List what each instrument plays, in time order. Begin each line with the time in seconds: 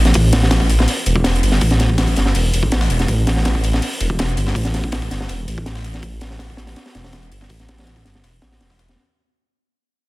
Already playing: detuned saw bass A1
0.05 snare, closed hi-hat
0.14 detuned saw bass A1, kick, closed hi-hat, open hi-hat
0.33 snare, closed hi-hat, open hi-hat
0.43 snare
0.51 snare, closed hi-hat, open hi-hat
0.60 kick
0.69 closed hi-hat, open hi-hat
0.79 snare
0.88 closed hi-hat, open hi-hat
1.06 detuned saw bass E1, closed hi-hat, open hi-hat
1.16 kick
1.24 snare, closed hi-hat, open hi-hat
1.35 closed hi-hat
1.43 detuned saw bass G1, closed hi-hat, open hi-hat
1.52 snare
1.61 detuned saw bass A1, kick, open hi-hat
1.71 snare, closed hi-hat
1.80 snare, closed hi-hat, open hi-hat
1.89 kick
1.98 snare, closed hi-hat, open hi-hat
2.07 kick, closed hi-hat
2.16 detuned saw bass G1, snare, closed hi-hat, open hi-hat
2.26 snare
2.35 detuned saw bass E1, closed hi-hat, open hi-hat
2.53 detuned saw bass E1, closed hi-hat, open hi-hat
2.63 detuned saw bass A1, kick
2.72 snare, closed hi-hat, open hi-hat
2.81 snare
2.90 detuned saw bass E1, closed hi-hat, open hi-hat
2.99 snare, closed hi-hat
3.08 detuned saw bass A1, kick, closed hi-hat, open hi-hat
3.27 snare, closed hi-hat, open hi-hat
3.36 snare
3.45 snare, closed hi-hat, open hi-hat
3.55 kick
3.64 closed hi-hat, open hi-hat
3.73 snare
3.82 closed hi-hat, open hi-hat
4.00 detuned saw bass E1, closed hi-hat, open hi-hat
4.10 kick
4.19 snare, closed hi-hat, open hi-hat
4.28 closed hi-hat
4.37 detuned saw bass G1, closed hi-hat, open hi-hat
4.47 snare
4.55 detuned saw bass A1, kick, open hi-hat
4.65 snare, closed hi-hat
4.74 snare, closed hi-hat, open hi-hat
4.84 kick
4.92 snare, closed hi-hat, open hi-hat
5.02 kick, closed hi-hat
5.11 detuned saw bass G1, snare, closed hi-hat, open hi-hat
5.20 snare
5.29 detuned saw bass E1, closed hi-hat, open hi-hat
5.48 detuned saw bass A1, closed hi-hat, open hi-hat
5.58 kick
5.66 snare, closed hi-hat, open hi-hat
5.75 snare
5.84 closed hi-hat, open hi-hat
5.94 snare, closed hi-hat
6.03 detuned saw bass A1, kick, closed hi-hat, open hi-hat
6.21 snare, closed hi-hat, open hi-hat
6.31 snare
6.39 snare, closed hi-hat, open hi-hat
6.50 kick
6.57 snare, closed hi-hat, open hi-hat
6.67 snare, open hi-hat
6.76 snare, closed hi-hat, open hi-hat
6.86 snare, open hi-hat
6.95 detuned saw bass E1, snare, closed hi-hat, open hi-hat
7.04 snare, open hi-hat
7.13 snare, closed hi-hat, open hi-hat
7.23 closed hi-hat
7.32 detuned saw bass G1, closed hi-hat, open hi-hat
7.41 snare
7.49 detuned saw bass A1, kick, open hi-hat
7.60 snare, closed hi-hat
7.69 snare, closed hi-hat, open hi-hat
7.78 snare, open hi-hat
7.82 snare, open hi-hat
7.87 snare, closed hi-hat, open hi-hat
7.96 kick, closed hi-hat
8.05 detuned saw bass G1, snare, closed hi-hat, open hi-hat
8.15 snare
8.24 detuned saw bass E1, snare, closed hi-hat, open hi-hat
8.42 detuned saw bass A1, snare, closed hi-hat, open hi-hat
8.52 snare, open hi-hat
8.60 detuned saw bass E1, snare, closed hi-hat, open hi-hat
8.70 kick, snare
8.79 snare, closed hi-hat, open hi-hat
8.89 snare, closed hi-hat